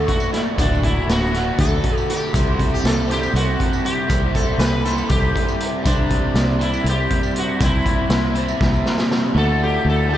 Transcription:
0.00 0.55 D2 medium
0.00 0.56 A2 medium
0.00 0.57 D3 medium
0.00 0.56 A3 medium
0.00 0.56 F#4 medium
0.00 0.10 A4 medium
0.08 0.32 F#4 medium
0.08 kick medium
0.08 closed hi-hat medium
0.20 tambourine medium
0.32 0.39 E4 medium
0.32 snare soft
0.32 closed hi-hat medium
0.56 1.01 D1 medium
0.56 1.30 D2 medium
0.56 1.31 A2 medium
0.56 1.32 D3 medium
0.56 1.32 A3 medium
0.56 0.82 D4 medium
0.56 1.33 F#4 medium
0.56 kick loud
0.56 closed hi-hat medium
0.56 tambourine medium
0.72 tambourine soft
0.83 1.10 E4 medium
0.83 kick medium
0.83 closed hi-hat medium
1.07 1.51 D1 medium
1.07 1.61 F#4 medium
1.07 snare loud
1.07 closed hi-hat medium
1.07 tambourine medium
1.31 2.31 D2 medium
1.31 2.32 A2 medium
1.31 2.32 D3 medium
1.31 2.32 A3 medium
1.31 2.33 F#4 medium
1.31 snare soft
1.31 closed hi-hat medium
1.58 1.80 D2 medium
1.58 2.06 A4 medium
1.58 kick medium
1.58 closed hi-hat medium
1.58 tambourine soft
1.84 kick medium
1.84 closed hi-hat medium
1.98 tambourine medium
2.10 2.56 G4 medium
2.10 closed hi-hat medium
2.23 tambourine soft
2.33 2.77 C2 medium
2.33 3.10 C3 medium
2.33 3.11 G3 medium
2.33 3.09 C4 medium
2.33 3.09 E4 medium
2.33 3.08 G4 medium
2.33 3.07 C5 medium
2.33 kick loud
2.33 closed hi-hat medium
2.33 tambourine medium
2.56 2.73 F#4 medium
2.56 kick medium
2.60 closed hi-hat medium
2.60 tambourine soft
2.74 2.86 G4 medium
2.84 3.27 C2 medium
2.84 3.11 A4 medium
2.84 snare loud
2.84 closed hi-hat medium
2.84 tambourine medium
3.07 4.07 C3 medium
3.07 4.08 G3 medium
3.07 4.09 C4 medium
3.07 4.09 E4 medium
3.07 4.10 G4 medium
3.07 4.10 C5 medium
3.07 closed hi-hat soft
3.11 3.35 G4 medium
3.11 snare soft
3.23 tambourine medium
3.33 3.55 C2 medium
3.33 3.84 F#4 medium
3.33 closed hi-hat medium
3.60 kick medium
3.60 closed hi-hat medium
3.73 tambourine medium
3.85 4.31 G4 medium
3.85 closed hi-hat medium
4.07 4.52 C2 medium
4.07 4.83 C3 medium
4.07 4.83 G3 medium
4.07 4.85 C4 medium
4.07 4.86 E4 medium
4.07 4.86 G4 medium
4.07 4.86 C5 medium
4.07 kick loud
4.07 closed hi-hat medium
4.07 tambourine medium
4.35 4.59 A4 medium
4.35 kick medium
4.35 closed hi-hat soft
4.35 tambourine soft
4.58 5.02 C2 medium
4.58 4.83 B4 medium
4.58 snare loud
4.58 closed hi-hat medium
4.58 tambourine medium
4.83 5.82 C3 medium
4.83 5.83 G3 medium
4.83 5.84 C4 medium
4.83 5.85 E4 medium
4.83 5.85 G4 medium
4.83 5.11 A4 medium
4.83 5.86 C5 medium
4.83 snare soft
4.83 closed hi-hat medium
4.98 tambourine medium
5.10 5.31 C2 loud
5.10 5.63 G4 medium
5.10 kick loud
5.10 closed hi-hat medium
5.36 kick medium
5.36 closed hi-hat medium
5.48 tambourine medium
5.60 closed hi-hat medium
5.83 6.28 C2 medium
5.83 6.62 C3 medium
5.83 6.61 G3 medium
5.83 6.61 C4 medium
5.83 6.62 D4 medium
5.83 6.60 E4 medium
5.83 6.60 G4 medium
5.83 6.59 C5 medium
5.83 kick loud
5.83 closed hi-hat medium
5.83 tambourine medium
6.10 kick medium
6.10 closed hi-hat medium
6.10 tambourine soft
6.34 6.77 C2 medium
6.34 snare loud
6.34 closed hi-hat medium
6.34 tambourine medium
6.59 7.57 C3 medium
6.59 7.58 G3 medium
6.59 7.59 C4 medium
6.59 7.59 E4 medium
6.59 6.85 E4 medium
6.59 7.59 G4 medium
6.59 7.58 C5 medium
6.59 closed hi-hat medium
6.74 tambourine medium
6.84 7.06 C2 medium
6.84 closed hi-hat medium
6.89 7.34 G4 medium
7.10 kick medium
7.10 closed hi-hat medium
7.23 tambourine medium
7.36 7.60 F#4 medium
7.36 closed hi-hat medium
7.59 8.03 C2 medium
7.59 8.31 C3 medium
7.59 8.32 G3 medium
7.59 8.34 C4 medium
7.59 8.34 E4 medium
7.59 8.34 G4 medium
7.59 8.35 C5 medium
7.59 kick loud
7.59 closed hi-hat medium
7.59 tambourine medium
7.64 8.83 E4 medium
7.86 kick medium
7.86 closed hi-hat medium
8.09 8.53 C2 medium
8.09 snare loud
8.09 closed hi-hat medium
8.09 tambourine medium
8.33 9.33 C3 medium
8.33 9.33 G3 medium
8.33 9.34 C4 medium
8.33 9.34 E4 medium
8.33 9.34 G4 medium
8.33 closed hi-hat medium
8.37 9.35 C5 medium
8.48 tambourine medium
8.60 8.82 C2 loud
8.60 kick loud
8.60 snare medium
8.73 tambourine soft
8.86 snare medium
8.98 snare medium
8.98 tambourine medium
9.12 snare medium
9.34 10.13 D2 medium
9.34 9.78 D2 medium
9.34 10.08 A2 medium
9.34 10.11 D3 medium
9.34 10.10 A3 medium
9.34 10.09 F#4 medium
9.34 9.62 A4 medium
9.63 9.85 G4 medium
9.85 10.18 D2 medium
9.89 10.13 A4 medium
10.09 10.18 D2 medium
10.09 10.18 A2 medium
10.09 10.18 D3 medium
10.09 10.18 A3 medium
10.09 10.18 F#4 medium
10.14 10.18 G4 medium

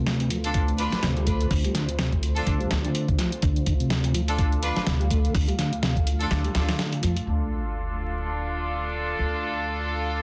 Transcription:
0.00 0.92 D2 medium
0.00 0.30 C3 medium
0.00 7.23 A3 medium
0.00 7.23 F4 medium
0.00 3.42 C5 medium
0.07 snare loud
0.07 closed hi-hat soft
0.07 closed hi-hat medium
0.20 closed hi-hat soft
0.30 0.38 F3 medium
0.30 closed hi-hat medium
0.44 0.55 D4 medium
0.44 0.55 F4 medium
0.44 0.55 A4 loud
0.44 closed hi-hat soft
0.54 kick loud
0.54 closed hi-hat medium
0.54 closed hi-hat soft
0.68 closed hi-hat soft
0.78 0.93 D4 loud
0.78 0.93 F4 medium
0.78 0.93 B4 loud
0.78 closed hi-hat medium
0.92 muted upright bass stroke soft
0.92 snare medium
0.92 closed hi-hat soft
1.03 1.45 D2 loud
1.03 1.15 C3 loud
1.03 snare loud
1.03 closed hi-hat medium
1.03 closed hi-hat soft
1.17 1.25 G3 medium
1.17 closed hi-hat soft
1.27 1.50 A3 medium
1.27 kick medium
1.27 closed hi-hat medium
1.41 closed hi-hat soft
1.51 2.40 D2 loud
1.51 1.64 D3 medium
1.51 kick loud
1.51 closed hi-hat soft
1.51 open hi-hat medium
1.64 1.73 G3 medium
1.64 closed hi-hat soft
1.75 1.88 D3 loud
1.75 snare soft
1.75 closed hi-hat medium
1.89 closed hi-hat soft
1.99 2.11 C3 medium
1.99 snare loud
1.99 closed hi-hat medium
1.99 closed hi-hat soft
2.12 kick medium
2.12 closed hi-hat soft
2.23 closed hi-hat medium
2.36 2.47 D4 medium
2.36 2.47 F4 medium
2.36 2.47 A4 loud
2.36 closed hi-hat soft
2.47 2.63 D2 medium
2.47 2.60 D3 medium
2.47 kick loud
2.47 closed hi-hat soft
2.47 closed hi-hat medium
2.60 2.69 G3 medium
2.60 closed hi-hat soft
2.71 2.87 D2 loud
2.71 snare loud
2.71 closed hi-hat medium
2.84 3.18 D3 medium
2.84 closed hi-hat soft
2.95 closed hi-hat medium
2.95 closed hi-hat soft
3.08 kick loud
3.08 closed hi-hat soft
3.19 3.32 F3 medium
3.19 snare soft
3.19 closed hi-hat medium
3.32 closed hi-hat soft
3.42 4.76 D2 medium
3.42 3.65 D3 loud
3.42 7.25 F5 medium
3.42 kick loud
3.42 closed hi-hat medium
3.42 closed hi-hat soft
3.56 closed hi-hat soft
3.66 3.74 D3 medium
3.66 kick medium
3.66 closed hi-hat medium
3.80 4.14 C3 medium
3.80 closed hi-hat soft
3.90 snare loud
3.90 closed hi-hat medium
3.90 closed hi-hat soft
4.04 closed hi-hat soft
4.14 4.22 F3 loud
4.14 closed hi-hat medium
4.28 4.39 D4 medium
4.28 4.39 F4 medium
4.28 4.39 A4 loud
4.28 closed hi-hat soft
4.39 kick loud
4.39 closed hi-hat medium
4.39 closed hi-hat soft
4.52 closed hi-hat soft
4.63 4.77 D4 loud
4.63 4.77 F4 medium
4.63 4.77 B4 loud
4.63 closed hi-hat medium
4.76 muted upright bass stroke soft
4.76 snare medium
4.76 closed hi-hat soft
4.87 5.29 D2 loud
4.87 4.98 C3 loud
4.87 snare loud
4.87 closed hi-hat medium
4.87 closed hi-hat soft
5.00 5.09 G3 medium
5.00 closed hi-hat soft
5.10 5.34 A3 medium
5.10 kick medium
5.10 closed hi-hat medium
5.25 closed hi-hat soft
5.34 6.24 D2 loud
5.34 5.48 D3 medium
5.34 kick loud
5.34 closed hi-hat soft
5.34 open hi-hat medium
5.48 5.57 G3 medium
5.48 closed hi-hat soft
5.58 5.72 D3 loud
5.58 snare soft
5.58 closed hi-hat medium
5.73 closed hi-hat soft
5.82 5.94 C3 loud
5.82 snare loud
5.82 closed hi-hat medium
5.82 closed hi-hat soft
5.96 kick medium
5.96 closed hi-hat soft
6.07 closed hi-hat medium
6.20 6.31 D4 medium
6.20 6.31 F4 medium
6.20 6.31 A4 loud
6.20 closed hi-hat soft
6.30 6.47 D2 medium
6.30 6.44 D3 medium
6.30 snare loud
6.30 closed hi-hat medium
6.30 closed hi-hat soft
6.44 6.53 G3 medium
6.44 closed hi-hat soft
6.55 6.71 D2 loud
6.55 6.64 D4 medium
6.55 6.64 F4 medium
6.55 6.64 A4 medium
6.55 snare loud
6.55 closed hi-hat medium
6.68 7.02 D3 medium
6.68 snare loud
6.68 closed hi-hat medium
6.68 closed hi-hat soft
6.79 snare loud
6.79 closed hi-hat medium
6.79 closed hi-hat soft
6.92 closed hi-hat soft
7.03 7.19 F2 medium
7.03 7.16 F3 medium
7.03 closed hi-hat medium
7.16 closed hi-hat soft
7.26 9.17 D2 medium
7.26 10.22 D4 medium
7.26 10.22 F4 medium
7.26 10.22 A4 medium
7.26 10.22 F5 medium
7.26 10.22 D6 medium
7.26 sub drop medium
9.19 10.22 D2 medium

